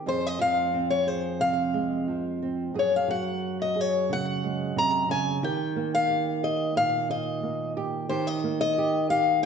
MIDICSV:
0, 0, Header, 1, 3, 480
1, 0, Start_track
1, 0, Tempo, 669643
1, 39, Time_signature, 4, 2, 24, 8
1, 6778, End_track
2, 0, Start_track
2, 0, Title_t, "Steel-string acoustic guitar"
2, 0, Program_c, 0, 25
2, 61, Note_on_c, 0, 72, 76
2, 190, Note_off_c, 0, 72, 0
2, 190, Note_on_c, 0, 75, 76
2, 293, Note_off_c, 0, 75, 0
2, 296, Note_on_c, 0, 77, 86
2, 627, Note_off_c, 0, 77, 0
2, 648, Note_on_c, 0, 73, 76
2, 771, Note_off_c, 0, 73, 0
2, 771, Note_on_c, 0, 72, 64
2, 1009, Note_on_c, 0, 77, 79
2, 1010, Note_off_c, 0, 72, 0
2, 1704, Note_off_c, 0, 77, 0
2, 2000, Note_on_c, 0, 73, 71
2, 2109, Note_off_c, 0, 73, 0
2, 2123, Note_on_c, 0, 77, 78
2, 2224, Note_off_c, 0, 77, 0
2, 2227, Note_on_c, 0, 78, 84
2, 2555, Note_off_c, 0, 78, 0
2, 2592, Note_on_c, 0, 75, 82
2, 2729, Note_off_c, 0, 75, 0
2, 2729, Note_on_c, 0, 73, 75
2, 2958, Note_off_c, 0, 73, 0
2, 2959, Note_on_c, 0, 78, 92
2, 3426, Note_off_c, 0, 78, 0
2, 3429, Note_on_c, 0, 82, 90
2, 3644, Note_off_c, 0, 82, 0
2, 3663, Note_on_c, 0, 80, 91
2, 3899, Note_off_c, 0, 80, 0
2, 3902, Note_on_c, 0, 79, 77
2, 4259, Note_off_c, 0, 79, 0
2, 4262, Note_on_c, 0, 77, 89
2, 4613, Note_off_c, 0, 77, 0
2, 4616, Note_on_c, 0, 75, 71
2, 4850, Note_off_c, 0, 75, 0
2, 4853, Note_on_c, 0, 77, 85
2, 5091, Note_off_c, 0, 77, 0
2, 5094, Note_on_c, 0, 75, 76
2, 5536, Note_off_c, 0, 75, 0
2, 5801, Note_on_c, 0, 72, 74
2, 5928, Note_off_c, 0, 72, 0
2, 5928, Note_on_c, 0, 75, 84
2, 6161, Note_off_c, 0, 75, 0
2, 6170, Note_on_c, 0, 75, 92
2, 6498, Note_off_c, 0, 75, 0
2, 6523, Note_on_c, 0, 77, 84
2, 6757, Note_off_c, 0, 77, 0
2, 6778, End_track
3, 0, Start_track
3, 0, Title_t, "Nylon-string guitar"
3, 0, Program_c, 1, 24
3, 0, Note_on_c, 1, 60, 51
3, 44, Note_on_c, 1, 41, 64
3, 49, Note_on_c, 1, 68, 61
3, 280, Note_on_c, 1, 53, 63
3, 521, Note_off_c, 1, 60, 0
3, 530, Note_on_c, 1, 60, 50
3, 762, Note_off_c, 1, 68, 0
3, 765, Note_on_c, 1, 68, 53
3, 1001, Note_on_c, 1, 48, 50
3, 1247, Note_on_c, 1, 56, 53
3, 1481, Note_off_c, 1, 53, 0
3, 1488, Note_off_c, 1, 48, 0
3, 1490, Note_on_c, 1, 53, 56
3, 1729, Note_off_c, 1, 60, 0
3, 1738, Note_on_c, 1, 60, 59
3, 1943, Note_off_c, 1, 53, 0
3, 1943, Note_off_c, 1, 68, 0
3, 1963, Note_off_c, 1, 41, 0
3, 1966, Note_on_c, 1, 42, 69
3, 1975, Note_off_c, 1, 60, 0
3, 1975, Note_on_c, 1, 68, 64
3, 2208, Note_on_c, 1, 54, 66
3, 2684, Note_off_c, 1, 68, 0
3, 2692, Note_on_c, 1, 68, 57
3, 2934, Note_on_c, 1, 49, 56
3, 3172, Note_off_c, 1, 56, 0
3, 3179, Note_on_c, 1, 56, 59
3, 3411, Note_off_c, 1, 49, 0
3, 3413, Note_on_c, 1, 48, 59
3, 3643, Note_off_c, 1, 48, 0
3, 3646, Note_on_c, 1, 49, 64
3, 3859, Note_off_c, 1, 42, 0
3, 3860, Note_off_c, 1, 54, 0
3, 3862, Note_off_c, 1, 68, 0
3, 3888, Note_off_c, 1, 49, 0
3, 3890, Note_on_c, 1, 51, 73
3, 3893, Note_on_c, 1, 67, 66
3, 3894, Note_off_c, 1, 56, 0
3, 4130, Note_on_c, 1, 58, 72
3, 4368, Note_off_c, 1, 67, 0
3, 4370, Note_on_c, 1, 67, 61
3, 4607, Note_off_c, 1, 67, 0
3, 4610, Note_on_c, 1, 67, 53
3, 4846, Note_on_c, 1, 46, 58
3, 5088, Note_on_c, 1, 63, 58
3, 5320, Note_off_c, 1, 58, 0
3, 5328, Note_on_c, 1, 58, 55
3, 5565, Note_off_c, 1, 67, 0
3, 5568, Note_on_c, 1, 67, 66
3, 5772, Note_off_c, 1, 58, 0
3, 5795, Note_off_c, 1, 51, 0
3, 5799, Note_off_c, 1, 46, 0
3, 5804, Note_on_c, 1, 51, 71
3, 5806, Note_off_c, 1, 67, 0
3, 5808, Note_on_c, 1, 67, 68
3, 6048, Note_on_c, 1, 58, 69
3, 6281, Note_off_c, 1, 67, 0
3, 6295, Note_on_c, 1, 67, 69
3, 6522, Note_off_c, 1, 67, 0
3, 6530, Note_on_c, 1, 67, 65
3, 6778, Note_off_c, 1, 51, 0
3, 6778, Note_off_c, 1, 58, 0
3, 6778, Note_off_c, 1, 63, 0
3, 6778, Note_off_c, 1, 67, 0
3, 6778, End_track
0, 0, End_of_file